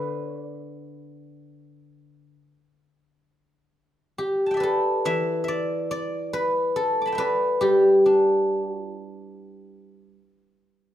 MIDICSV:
0, 0, Header, 1, 2, 480
1, 0, Start_track
1, 0, Tempo, 886263
1, 762, Tempo, 947867
1, 1722, Time_signature, 4, 2, 24, 8
1, 1722, Tempo, 895522
1, 2202, Tempo, 862069
1, 3642, Tempo, 845070
1, 6006, End_track
2, 0, Start_track
2, 0, Title_t, "Guzheng"
2, 0, Program_c, 0, 107
2, 0, Note_on_c, 0, 50, 46
2, 0, Note_on_c, 0, 71, 69
2, 0, Note_on_c, 0, 76, 78
2, 20, Note_off_c, 0, 71, 0
2, 20, Note_on_c, 0, 72, 69
2, 134, Note_off_c, 0, 72, 0
2, 134, Note_on_c, 0, 73, 69
2, 247, Note_off_c, 0, 76, 0
2, 248, Note_off_c, 0, 73, 0
2, 248, Note_on_c, 0, 74, 69
2, 1217, Note_off_c, 0, 74, 0
2, 1239, Note_off_c, 0, 50, 0
2, 2194, Note_on_c, 0, 67, 65
2, 2350, Note_on_c, 0, 81, 31
2, 2374, Note_on_c, 0, 79, 38
2, 2392, Note_on_c, 0, 76, 40
2, 2408, Note_on_c, 0, 74, 47
2, 2426, Note_on_c, 0, 71, 49
2, 2444, Note_on_c, 0, 69, 63
2, 2678, Note_off_c, 0, 76, 0
2, 2678, Note_on_c, 0, 52, 53
2, 2680, Note_on_c, 0, 76, 90
2, 2891, Note_off_c, 0, 76, 0
2, 2893, Note_on_c, 0, 76, 52
2, 2915, Note_off_c, 0, 74, 0
2, 2917, Note_on_c, 0, 74, 75
2, 3152, Note_off_c, 0, 74, 0
2, 3155, Note_on_c, 0, 74, 77
2, 3156, Note_off_c, 0, 81, 0
2, 3240, Note_off_c, 0, 79, 0
2, 3389, Note_off_c, 0, 71, 0
2, 3391, Note_on_c, 0, 71, 75
2, 3505, Note_off_c, 0, 67, 0
2, 3626, Note_off_c, 0, 69, 0
2, 3628, Note_on_c, 0, 69, 72
2, 3774, Note_on_c, 0, 86, 33
2, 3796, Note_on_c, 0, 83, 38
2, 3805, Note_on_c, 0, 81, 40
2, 3835, Note_on_c, 0, 79, 40
2, 3847, Note_off_c, 0, 76, 0
2, 3849, Note_on_c, 0, 76, 38
2, 3865, Note_off_c, 0, 71, 0
2, 3867, Note_on_c, 0, 71, 85
2, 3873, Note_off_c, 0, 74, 0
2, 3875, Note_on_c, 0, 74, 42
2, 4110, Note_on_c, 0, 67, 68
2, 4115, Note_on_c, 0, 55, 56
2, 4120, Note_off_c, 0, 52, 0
2, 4365, Note_on_c, 0, 62, 41
2, 4466, Note_off_c, 0, 86, 0
2, 4562, Note_off_c, 0, 83, 0
2, 4628, Note_off_c, 0, 81, 0
2, 4695, Note_off_c, 0, 67, 0
2, 4695, Note_on_c, 0, 66, 68
2, 4718, Note_off_c, 0, 79, 0
2, 4797, Note_off_c, 0, 66, 0
2, 4797, Note_on_c, 0, 65, 68
2, 4826, Note_off_c, 0, 76, 0
2, 4874, Note_off_c, 0, 69, 0
2, 4894, Note_off_c, 0, 65, 0
2, 4894, Note_on_c, 0, 64, 68
2, 4924, Note_off_c, 0, 74, 0
2, 5028, Note_off_c, 0, 71, 0
2, 5321, Note_off_c, 0, 62, 0
2, 5448, Note_off_c, 0, 64, 0
2, 5557, Note_off_c, 0, 55, 0
2, 6006, End_track
0, 0, End_of_file